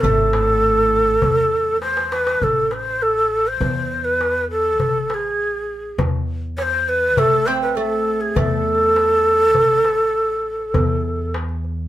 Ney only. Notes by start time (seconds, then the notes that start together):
0.01 A4
1.81 C5
2.13 B4
2.43 A4
2.73 C5
3.02 A4
3.47 C5
4.05 B4
4.51 A4
5.10 A4
5.14 G#4
6.57 C#5
6.62 C5
6.89 B4
7.18 A4
7.46 C5
7.62 B4
7.76 A4
8.21 G#4
8.36 A4